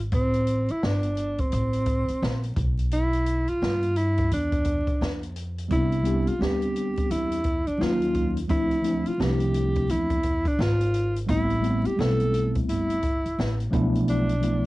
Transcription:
0.12 A1 C4, kick, closed hi-hat
0.34 closed hi-hat
0.47 closed hi-hat
0.68 E4, muted upright bass stroke, closed hi-hat
0.83 G1 D4, snare
1.03 closed hi-hat
1.17 closed hi-hat
1.38 C4, kick, closed hi-hat
1.52 A1, closed hi-hat
1.73 closed hi-hat
1.86 kick, closed hi-hat
2.08 muted upright bass stroke, closed hi-hat
2.22 A#1, snare
2.43 closed hi-hat
2.56 B1, kick, closed hi-hat
2.79 closed hi-hat
2.91 E4, closed hi-hat
3.13 closed hi-hat
3.26 closed hi-hat
3.48 F4, muted upright bass stroke, closed hi-hat
3.62 G2, snare
3.83 closed hi-hat
3.96 E4, closed hi-hat
4.18 kick, closed hi-hat
4.31 E2 D4, closed hi-hat
4.52 kick, closed hi-hat
4.64 kick, closed hi-hat
4.87 muted upright bass stroke, kick, closed hi-hat
5.01 F2, snare
5.23 closed hi-hat
5.36 closed hi-hat
5.58 closed hi-hat
5.68 C2 G3 B3 C4 D4 E4, kick, closed hi-hat
5.73 E4
5.92 closed hi-hat
6.03 G3 B3 C4 D4 G4, closed hi-hat
6.27 F4, muted upright bass stroke, closed hi-hat
6.39 D2 G3 B3 C4 D4 G4, snare
6.62 closed hi-hat
6.76 closed hi-hat
6.97 kick, closed hi-hat
7.11 E2 E4, closed hi-hat
7.32 closed hi-hat
7.44 kick, closed hi-hat
7.67 D4, muted upright bass stroke, closed hi-hat
7.78 D#2 F#3 A#3 C#4 D#4 E4 F4, snare
7.88 F4
8.02 closed hi-hat
8.15 kick, closed hi-hat
8.37 closed hi-hat
8.48 D2 F3 A3 C4 D4 E4, kick, closed hi-hat
8.71 closed hi-hat
8.82 F3 A3 C4 D4 E4, closed hi-hat
9.06 F4, muted upright bass stroke, closed hi-hat
9.17 C2 F3 A3 C4 D4 E4 G4, snare
9.40 closed hi-hat
9.54 closed hi-hat
9.75 kick, closed hi-hat
9.89 E2 E4, closed hi-hat
10.10 kick, closed hi-hat
10.23 kick, closed hi-hat
10.45 D4, muted upright bass stroke, kick, closed hi-hat
10.59 G#1 F4, snare
10.81 closed hi-hat
10.94 closed hi-hat
11.16 closed hi-hat
11.26 A1 G3 A3 B3 C4 E4, kick, closed hi-hat
11.50 closed hi-hat
11.61 G3 A3 B3 C4 E4, closed hi-hat
11.85 G4, muted upright bass stroke, closed hi-hat
11.96 B1 G3 A3 B3 C4 E4 A4
12.01 snare
12.20 closed hi-hat
12.34 closed hi-hat
12.55 kick, closed hi-hat
12.69 G1 E4, closed hi-hat
12.90 closed hi-hat
13.03 kick, closed hi-hat
13.26 muted upright bass stroke, closed hi-hat
13.39 A1, snare
13.60 closed hi-hat
13.71 B1 F3 A3 B3 D4, kick, closed hi-hat
13.75 E4
13.95 closed hi-hat
14.08 D4, closed hi-hat
14.29 closed hi-hat
14.40 F3 A3 B3 D4 E4, closed hi-hat

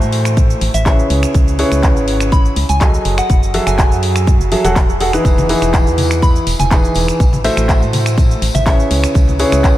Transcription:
Already playing: A3 E4 F#4 A4 C5
0.01 A2, shaker
0.13 open hi-hat
0.25 finger snap, closed hi-hat, shaker
0.37 kick, closed hi-hat, shaker
0.50 shaker
0.61 A1, open hi-hat
0.74 A1 E5, closed hi-hat, shaker
0.86 C#3 E4 G#4 B4 C#5 E5, kick, clap, open hi-hat, shaker
0.99 shaker
1.10 C#2, open hi-hat
1.23 finger snap, closed hi-hat, shaker
1.34 C#2, kick, closed hi-hat, shaker
1.48 shaker
1.59 C#3 E4 G#4 B4 C#5, open hi-hat
1.72 C#2, finger snap, closed hi-hat, shaker
1.83 kick, clap, closed hi-hat, shaker
1.96 G#1, shaker
2.08 open hi-hat
2.20 finger snap, closed hi-hat, shaker
2.32 B5, kick, closed hi-hat, shaker
2.45 shaker
2.56 C#2, open hi-hat
2.69 C#2 G#5, closed hi-hat, shaker
2.81 F#3 F#4 G#4 A4 D#5, kick, clap, closed hi-hat, shaker
2.94 shaker
3.05 F#1, open hi-hat
3.18 F#5, finger snap, closed hi-hat, shaker
3.30 F#1, kick, closed hi-hat, shaker
3.43 shaker
3.54 F#3 F#4 G#4 A4 E5, open hi-hat
3.67 F#1 G#5, finger snap, closed hi-hat, shaker
3.78 kick, clap, closed hi-hat, shaker
3.91 F#2, shaker
4.03 open hi-hat
4.16 finger snap, closed hi-hat, shaker
4.27 kick, closed hi-hat, shaker
4.40 F#1, shaker
4.52 F#3 F#4 G#4 A4 E5, open hi-hat
4.64 E1 F#3 F#4 G#4 A4 F#5, closed hi-hat, shaker
4.76 kick, clap, open hi-hat, shaker
4.89 shaker
5.00 F#4 G#4 A4 F#5, open hi-hat
5.13 E3 D#4 E4 G#4 B4, finger snap, closed hi-hat, shaker
5.25 E1, kick, closed hi-hat, tambourine, shaker
5.37 tambourine, high conga, shaker
5.49 E3 D#4 E4 G#4 B4, open hi-hat, tambourine
5.62 E1, finger snap, closed hi-hat, tambourine, shaker
5.73 kick, clap, closed hi-hat, tambourine, shaker
5.86 E2, tambourine, shaker
5.98 open hi-hat, tambourine, high conga
6.11 finger snap, closed hi-hat, tambourine, shaker
6.22 B5, kick, closed hi-hat, tambourine, shaker
6.35 tambourine, shaker
6.47 E1, open hi-hat, tambourine
6.59 E1 G#5, closed hi-hat, tambourine, high conga, shaker
6.71 E3 D#4 E4 G#4 B4, kick, clap, closed hi-hat, tambourine, shaker
6.83 tambourine, shaker
6.95 E1, open hi-hat, tambourine
7.08 finger snap, closed hi-hat, tambourine, shaker
7.20 A1, kick, closed hi-hat, tambourine, shaker
7.33 tambourine, high conga, shaker
7.44 A3 E4 F#4 A4 C5 E5, open hi-hat, tambourine
7.57 A1, finger snap, closed hi-hat, shaker
7.69 kick, clap, closed hi-hat, tambourine, shaker
7.82 A2, tambourine, shaker
7.93 open hi-hat, tambourine, high conga
8.06 finger snap, closed hi-hat, tambourine, shaker
8.18 kick, closed hi-hat, tambourine, shaker
8.30 tambourine, shaker
8.42 A1, open hi-hat, tambourine
8.54 A1 E5, closed hi-hat, tambourine, high conga, shaker
8.66 C#3 E4 G#4 B4 C#5 E5, kick, clap, open hi-hat, tambourine, shaker
8.79 tambourine, shaker
8.91 C#2, open hi-hat, tambourine
9.04 finger snap, closed hi-hat, tambourine, shaker
9.15 C#2, kick, closed hi-hat, tambourine, shaker
9.28 tambourine, high conga, shaker
9.39 C#3 E4 G#4 B4 C#5, open hi-hat, tambourine
9.51 C#2, finger snap, closed hi-hat, tambourine, shaker
9.64 kick, clap, closed hi-hat, tambourine, shaker

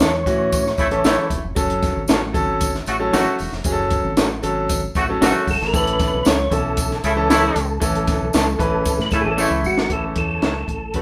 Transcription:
Already playing: C#5
0.00 E2 C#4 E4 A4 C#5, snare, closed hi-hat, tambourine
0.26 A2 E3 C#4 F#4, kick, closed hi-hat, tambourine
0.52 kick, closed hi-hat, tambourine
0.66 snare
0.78 A1 C#3 A3 E4, kick, closed hi-hat, tambourine
0.90 E3 C#4 A4, closed hi-hat
1.04 A1 C#3 A3 C#4 E4 A4 C#5, snare, closed hi-hat, tambourine
1.30 E1, kick, closed hi-hat, tambourine
1.44 F1
1.55 F#1 F#3 C#4 A4, kick, closed hi-hat, tambourine
1.70 closed hi-hat
1.83 kick, snare, closed hi-hat, tambourine
1.96 G#1
2.08 A1 C#4 F#4 A4 C#5, snare, closed hi-hat, tambourine
2.33 G#1 F#3 C#4 A4, kick, closed hi-hat, tambourine
2.61 kick, closed hi-hat, tambourine
2.74 snare
2.86 A1 C#3 A3 F#4, closed hi-hat, tambourine
2.99 F#3 C#4 A4
3.12 A1 C#3 A3 C#4 F#4 A4 C#5, snare, closed hi-hat, tambourine
3.39 E1, open hi-hat, tambourine
3.52 F1, snare
3.64 F#1 F#3 C#4 G#4, kick, closed hi-hat, tambourine
3.72 A4
3.90 kick, closed hi-hat, tambourine
4.04 G#1
4.17 A1 C#4 F#4 A4 C#5, snare, closed hi-hat, tambourine
4.43 G#1 F#3 C#4 A4, closed hi-hat, tambourine
4.69 kick, closed hi-hat, tambourine
4.95 A1 C#3 A3 F#4, kick, closed hi-hat, tambourine
5.09 F#3 C#4 A4
5.21 A1 C#3 A3 C#4 F#4 A4 C#5, snare, closed hi-hat, tambourine
5.47 G1 A4, kick, open hi-hat, tambourine
5.61 G#1, snare
5.67 A#4
5.73 A1 E3 C4 A4 B4, kick, closed hi-hat, tambourine
5.80 C#4
5.87 closed hi-hat
6.00 kick, snare, closed hi-hat, tambourine
6.13 B1
6.25 C#2 C#4 E4 A4 C#5, snare, closed hi-hat, tambourine
6.50 B1 E3 C#4 A4, kick, closed hi-hat, tambourine
6.77 kick, closed hi-hat, tambourine
6.91 snare
7.04 C#2 C#3 A3 E4, closed hi-hat, tambourine
7.16 E3 C#4 A4
7.30 C#3 A3 C#4 E4 A4 C#5, snare, closed hi-hat, tambourine
7.56 C#2, closed hi-hat, tambourine
7.80 A1 E3 C#4 A4, kick, closed hi-hat, tambourine
7.95 closed hi-hat
8.07 kick, snare, closed hi-hat, tambourine
8.21 B1
8.33 C#2 C#4 E4 A4 C#5, snare, closed hi-hat, tambourine
8.59 A1 E3 C#4 B4, kick, closed hi-hat, tambourine
8.85 kick, closed hi-hat, tambourine
8.99 A2 B4, snare
9.11 A2 C#3 A3 E4 A4, kick, closed hi-hat, tambourine
9.21 A1 E3 C#4 G#4 A4
9.31 A4
9.37 C#3 A3 C#4 E4 A4 C#5, tambourine
9.50 C#2
9.64 G#1 F#4, tambourine
9.78 snare
9.90 A1 C#3 E3 A3 C#4 E4 A4, kick, closed hi-hat
10.16 E2 A4, kick, closed hi-hat
10.42 C#2 C#4 E4 A4 C#5, snare, closed hi-hat
10.68 A1, kick, closed hi-hat
10.94 F#1 C#3 F#3 A3 C#4 F#4 A4 B4, kick, closed hi-hat

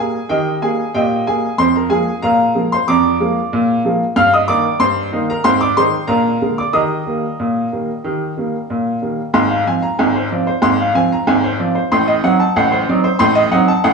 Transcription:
Already playing: G3 G#5
0.00 A#3 G#4
0.29 D#3 G4 D#5 G5
0.62 G3 A#3 G#4 G#5
0.94 A#2 G4 D#5 G5
1.27 G3 A#3 G#4 G#5
1.58 F2 C5 C6
1.76 A#4 A#5
1.90 F3 G#3 A#3 G#4 G#5
2.22 A#2 A#4 F5 A#5
2.55 F3 G#3 A#3
2.72 C5 C6
2.88 F2 D5 A#5 D6
3.20 F3 G#3 A#3
3.53 A#2
3.85 F3 G#3 A#3
4.16 G2 F5 F6
4.34 D#5 D#6
4.48 D#3 A#3 D#4 D5 D6
4.80 G2 C5 C6
5.12 D#3 A#3 D#4
5.30 A#4 A#5
5.44 G#2 C4 C5 C6
5.61 D5 D6
5.77 D#3 G#3 D#4 C5 C6
6.07 A#2 D4 A#4 F5 A#5
6.42 D3 G#3 A#3
6.58 D5 D6
6.73 D#3 G4 D#5 A#5 D#6
7.06 D#3 G3 A#3
7.40 A#2
7.72 D#3 G3 A#3
8.04 D#3 G4
8.37 D#3 G3 A#3
8.70 A#2
9.02 D#3 G3 A#3
9.33 G#1 G#2 C6
9.50 F5
9.67 F3 C4 G#5
9.82 A#5
9.99 G#1 G#2 G#5
10.15 C5
10.31 F3 C4 D5
10.47 C5
10.62 G#1 G#2 C6
10.80 F5
10.95 F3 C4 G#5
11.12 A#5
11.27 G#1 G#2 G#5
11.44 C5
11.60 F3 C4 D5
11.75 C5
11.92 A1 A2 C6
12.08 D#5
12.24 F#3 C4 D#4 F#5
12.40 A5
12.56 A1 A2 F#5
12.72 C5
12.89 F#3 C4 D#4 D5
13.04 C5
13.19 A1 A2 C6
13.35 D#5
13.52 F#3 C4 D#4 F#5
13.68 A5
13.84 A1 A2 F#5

